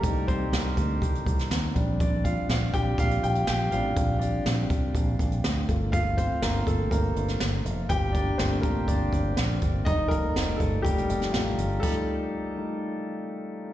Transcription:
<<
  \new Staff \with { instrumentName = "Grand piano" } { \time 4/4 \key g \minor \tempo 4 = 122 << { <bes bes'>8 <c' c''>4. r2 | <d' d''>8 <f' f''>8 <f' f''>8 <g' g''>8 <f' f''>8 <g' g''>8 <g' g''>8 <f' f''>8~ | <f' f''>8 <d' d''>4. r2 | <f' f''>8 <c' c''>8 <bes bes'>8 a'8 <bes bes'>8 r4. |
<g' g''>8 <d' d''>8 <c' c''>8 <bes bes'>8 <d' d''>8 r4. | <ees' ees''>8 <bes bes'>4 <a a'>8 <g g'>4 <f f'>4 | a'2. r4 | } \\ { <g c' ees'>4. r2 <g c' d'>8~ | <g c' d'>4. <g c' d'>8 r4. <g c' d'>8~ | <g c' d'>4 <g c' d'>8 r2 <a bes f'>8~ | <a bes f'>4. <a bes f'>8 r2 |
r4 <a bes f'>2. | r8 <g ees' a'>4. r2 | <g a ees'>4. <g a ees'>8 r2 | } >> }
  \new Staff \with { instrumentName = "Fingered electric bass" } { \clef bass \time 4/4 \key g \minor c,4 c,8 d,8 c,8 c,8 ees,8 bes,,8~ | bes,,4 bes,,8 bes,,8 bes,,8 bes,,8 bes,,8 a,,8 | bes,,4 bes,,8 c,8 bes,,8 bes,,8 d,8 g,,8~ | g,,4 g,,8 g,,8 g,,8 g,,8 g,,8 f,,8 |
g,,4 g,,8 a,,8 g,,8 g,,8 bes,,8 g,,8 | f,,4 f,,8 g,,8 f,,8 f,,8 a,,8 g,,8 | r1 | }
  \new DrumStaff \with { instrumentName = "Drums" } \drummode { \time 4/4 <hh bd>8 <hh bd>8 <hh sn>8 <hh bd>8 <hh bd>16 hh16 <hh bd>16 <hh sn>16 <hh sn>8 <hh bd>8 | <hh bd>8 <hh bd>8 <hh sn>8 <hh bd>8 <hh bd>16 hh16 hh16 hh16 <hh sn>8 hh8 | <hh bd>8 hh8 <hh sn>8 <hh bd>8 <hh bd>8 <hh bd>16 hh16 <hh sn>8 <hh bd>8 | <hh bd>8 <hh bd>8 <hh sn>8 <hh bd>8 <hh bd>8 hh16 <hh sn>16 <hh sn>8 hh8 |
<hh bd>8 <hh bd>8 <hh sn>8 <hh bd>8 <hh bd>8 <hh bd>8 <hh sn>8 <hh bd>8 | <hh bd>8 <hh bd>8 <hh sn>8 <hh bd>8 <hh bd>16 hh16 hh16 <hh sn>16 <hh sn>8 hh8 | <cymc bd>4 r4 r4 r4 | }
>>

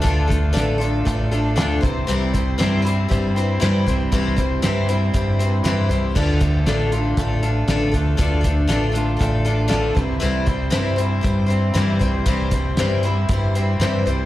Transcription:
<<
  \new Staff \with { instrumentName = "Twelve-string acoustic guitar" } { \time 4/4 \key d \minor \tempo 4 = 118 <d a d' f' a'>8 <d' f' a'>8 <d a d' f' a'>8 <d' f' a'>8 <a d' f' a'>8 <d' f' a'>8 <d a d' f' a'>8 <g c' e' c''>8 | <c e g c' e' c''>8 <g c' e' c''>8 <c e g c' e' c''>8 <g c' e' c''>8 <g c' e' c''>8 <g c' e' c''>8 <c e g c' e' c''>8 <g c' e' c''>8 | <c e g c' e' c''>8 <g c' e' c''>8 <c e g c' e' c''>8 <g c' e' c''>8 <g c' e' c''>8 <g c' e' c''>8 <c e g c' e' c''>8 <g c' e' c''>8 | <d a d' f' a'>8 <d' f' a'>8 <d a d' f' a'>8 <d' f' a'>8 <a d' f' a'>8 <d' f' a'>8 <d a d' f' a'>8 <d' f' a'>8 |
<d a d' f' a'>8 <d' f' a'>8 <d a d' f' a'>8 <d' f' a'>8 <a d' f' a'>8 <d' f' a'>8 <d a d' f' a'>8 <g c' e' c''>8 | <c e g c' e' c''>8 <g c' e' c''>8 <c e g c' e' c''>8 <g c' e' c''>8 <g c' e' c''>8 <g c' e' c''>8 <c e g c' e' c''>8 <g c' e' c''>8 | <c e g c' e' c''>8 <g c' e' c''>8 <c e g c' e' c''>8 <g c' e' c''>8 <g c' e' c''>8 <g c' e' c''>8 <c e g c' e' c''>8 <g c' e' c''>8 | }
  \new Staff \with { instrumentName = "Clean electric guitar" } { \time 4/4 \key d \minor <d a d'>8 a8 d'8 f'8 a8 d'8 d8 c8 | c8 g8 c'8 e'8 g8 c'8 e8 g8 | c8 g8 c'8 e'8 g8 c'8 e8 g8 | d8 a8 d'8 f'8 a8 d'8 d8 a8 |
d8 a8 d'8 f'8 a8 d'8 d8 c8 | c8 g8 c'8 e'8 g8 c'8 e8 g8 | c8 g8 c'8 e'8 g8 c'8 e8 g8 | }
  \new Staff \with { instrumentName = "Fingered electric bass" } { \clef bass \time 4/4 \key d \minor d,4 a,,4 a,,4 d,8 c,8 | c,4 g,4 g,4 g,8 c,8 | c,4 g,4 g,4 g,8 c,8 | d,4 a,,4 a,,4 a,,8 d,8 |
d,4 a,,4 a,,4 a,,8 c,8 | c,4 g,4 g,4 g,8 c,8 | c,4 g,4 g,4 g,8 c,8 | }
  \new DrumStaff \with { instrumentName = "Drums" } \drummode { \time 4/4 <hh bd>8 <hh bd>8 <hh sn>8 hh8 <hh bd>8 hh8 <hh sn>8 <hh bd>8 | hh8 <hh bd>8 <hh sn>8 hh8 <hh bd>8 hh8 <hh sn>8 <hh bd>8 | <hh bd>8 <hh bd sn>8 <hh sn>8 hh8 <hh bd>8 hh8 <hh sn>8 hh8 | <cymc bd>8 <hh bd sn>8 <hh sn>8 hh8 <hh bd>8 hh8 <hh sn>8 <hh bd>8 |
<hh bd>8 <hh bd sn>8 <hh sn>8 hh8 <hh bd>8 hh8 <hh sn>8 <hh bd>8 | hh8 <hh bd>8 <hh sn>8 hh8 <hh bd>8 hh8 <hh sn>8 <hh bd>8 | <hh bd>8 <hh bd>8 <hh sn>8 hh8 <hh bd>8 hh8 <hh sn>8 hh8 | }
>>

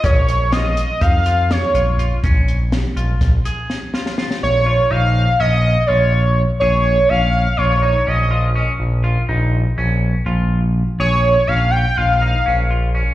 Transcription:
<<
  \new Staff \with { instrumentName = "Analog synth lead" } { \time 9/8 \key bes \minor \tempo 4. = 82 des''4 ees''4 f''4 des''4 r8 | r1 r8 | des''4 f''4 ees''4 des''4 r8 | des''4 f''4 des''4 ees''4 r8 |
r1 r8 | des''4 f''8 g''8 f''4. r4 | }
  \new Staff \with { instrumentName = "Clean electric guitar" } { \time 9/8 \key bes \minor des'4 f'4 ees'8 f'4 f'8 f'8 | des'4 r8 f'4 aes'4 f'8 f'8 | r8 f'8 ees'4 des'4 f'4 r8 | aes'4 des'4 f'8 ees'8 des'8 f'8 des'8 |
r8 f'8 ees'4 des'4 f'4 r8 | aes'4 des'4 f'8 ees'8 des'8 f'8 des'8 | }
  \new Staff \with { instrumentName = "Analog synth bass" } { \clef bass \time 9/8 \key bes \minor bes,,2 f,4. bes,,4 | bes,,4. bes,,8 bes,,8 r2 | bes,,4 bes,,4 bes,,4 bes,,4. | bes,,4 bes,,4 bes,,4 bes,,4. |
bes,,4 bes,,4 bes,,4 bes,,4. | bes,,4 bes,,4 bes,,4 bes,,4. | }
  \new DrumStaff \with { instrumentName = "Drums" } \drummode { \time 9/8 <hh bd>8 hh8 <hh sn>8 hh8 <hh bd>8 hh8 <hh sn>8 hh8 hh8 | <hh bd>8 hh8 <hh sn>8 hh8 <hh bd sn>8 hh8 sn8 sn16 sn16 sn16 sn16 | r4 r4 r4 r4. | r4 r4 r4 r4. |
r4 r4 r4 r4. | r4 r4 r4 r4. | }
>>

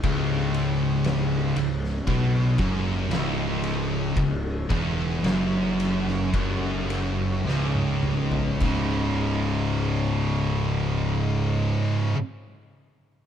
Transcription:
<<
  \new Staff \with { instrumentName = "String machine" } { \clef bass \time 4/4 \key cis \minor \tempo 4 = 54 <cis gis dis'>1~ | <cis gis dis'>1 | <cis gis dis'>1 | }
  \new Staff \with { instrumentName = "Distorted electric guitar" } { \clef bass \time 4/4 \key cis \minor cis,4. cis,8 b,8 fis,8 cis,4 | cis,8 e,8 fis,4 fis,4 cis,4 | <cis, gis, cis>1 | }
  \new Staff \with { instrumentName = "Distorted electric guitar" } { \clef bass \time 4/4 \key cis \minor cis,4. cis,8 b,8 fis,8 cis,4 | cis,8 e,8 fis,4 fis,4 cis,4 | <cis, gis, cis>1 | }
  \new Staff \with { instrumentName = "Distorted electric guitar" } { \clef bass \time 4/4 \key cis \minor cis,4. cis,8 b,8 fis,8 cis,4 | cis,8 e,8 fis,4 fis,4 cis,4 | <cis, gis, cis>1 | }
  \new Staff \with { instrumentName = "Fingered electric bass" } { \clef bass \time 4/4 \key cis \minor cis,,4. cis,,8 b,,8 fis,,8 cis,,4 | cis,,8 e,,8 fis,,4 fis,,4 cis,,4 | cis,,1 | }
  \new DrumStaff \with { instrumentName = "Drums" } \drummode { \time 4/4 <bd cymr>8 cymr8 <cymr sn>8 cymr16 sn16 <bd cymr>8 <bd cymr>8 <cymr sn>8 cymr8 | <bd cymr>8 <bd cymr>8 <cymr sn>8 cymr16 sn16 <bd cymr>8 cymr8 sn16 tommh16 toml16 tomfh16 | <cymc bd>4 r4 r4 r4 | }
>>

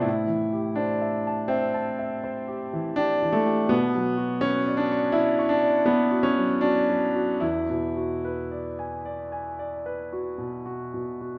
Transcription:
\new Staff \with { instrumentName = "Grand piano" } { \time 5/4 \key a \phrygian \tempo 4 = 81 << { \tuplet 3/2 { a,8 e8 g'8 c''8 e''8 a''8 e''8 a''8 e''8 c''8 g'8 e8 g'8 e8 g'8 } | \key e \mixolydian \tuplet 3/2 { b,8 fis8 fis'8 b'8 d''8 cis'''8 d''8 cis'''8 d''8 b'8 fis'8 fis8 fis'8 fis8 fis'8 } | \tuplet 3/2 { e,8 b,8 fis'8 b'8 d''8 gis''8 d''8 gis''8 d''8 b'8 fis'8 b,8 fis'8 b,8 fis'8 } | } \\ { e'4 d'4 c'4. r8 d'8 a8 | b4 cis'8 d'8 e'8 d'8 b8 cis'8 d'4 | e'1 r4 | } >> }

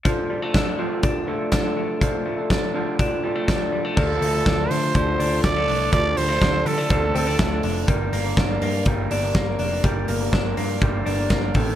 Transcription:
<<
  \new Staff \with { instrumentName = "Trumpet" } { \time 4/4 \key d \phrygian \tempo 4 = 123 r1 | r1 | a'4. c''4. d''4 | d''8 c''4 a'2 r8 |
r1 | r1 | }
  \new Staff \with { instrumentName = "Clean electric guitar" } { \time 4/4 \key d \phrygian <f d' f' a'>8. <d' f' a'>8. <d f d' f' a'>4 <f d' f' a'>8. <d' f' a'>8. | <f d' f' a'>8. <d' f' a'>8. <d f d' f' a'>4 <f d' f' a'>8. <d' f' a'>8. | <f d' f' a'>8. <d' f' a'>8 <d' f' a'>8. <d f d' f' a'>8. <d' f' a'>8 <d' f' a'>8. | <f d' f' a'>8. <d' f' a'>8 <d' f' a'>8. <d f d' f' a'>8. <d' f' a'>8 <d' f' a'>8. |
<g bes d' bes'>8. <g bes d' bes'>8 <g bes d' bes'>8. <g, d g bes d' bes'>8. <g bes d' bes'>8 <g bes d' bes'>8. | <g bes d' bes'>8. <g bes d' bes'>8 <g bes d' bes'>8. <g, d g bes d' bes'>8. <g bes d' bes'>8 <g bes d' bes'>16 <a c' ees' a'>8 | }
  \new Staff \with { instrumentName = "Clean electric guitar" } { \time 4/4 \key d \phrygian f8 g16 a16 d'8 f8 d'8 a8 d'8 a8 | f8 a8 d'8 f8 d'8 g16 a16 d'8 g16 a16 | f8 a8 d'8 a8 f8 d'8 g16 a16 d'8 | f8 g16 a16 d'8 g16 a16 f8 c'16 d'16 a8 d'8 |
g8 bes8 d'8 bes8 g8 d'8 bes8 d'8 | g8 bes8 d'8 bes8 g8 d'8 bes8 ees8 | }
  \new Staff \with { instrumentName = "Picked electric bass" } { \clef bass \time 4/4 \key d \phrygian r1 | r1 | d,8 d,8 d,8 d8 d,8 d,8 d,8 c,8 | d,8 d,8 d,8 d8 d,8 d,8 d,8 f,,8 |
g,,8 g,,8 g,,8 g,8 g,,8 g,,8 g,,8 f,,8 | g,,8 g,,8 g,,8 g,8 g,,8 g,,8 g,,8 a,,8 | }
  \new DrumStaff \with { instrumentName = "Drums" } \drummode { \time 4/4 <hh bd>4 <hh bd sn>4 <hh bd>4 <hh bd sn>4 | <hh bd>4 <hh bd sn>4 <hh bd>4 <hh bd sn>4 | <cymc bd>8 hho8 <bd sn>8 hho8 <hh bd>8 hho8 <hh bd sn>8 hho8 | <hh bd>8 hho8 <hh bd sn>8 hho8 <hh bd>8 hho8 <hh bd sn>8 hho8 |
<hh bd>8 hho8 <hh bd sn>8 hho8 <hh bd>8 hho8 <hh bd sn>8 hho8 | <hh bd>8 hho8 <hh bd sn>8 hho8 <hh bd>8 hho8 <hh bd sn>8 <hho bd>8 | }
>>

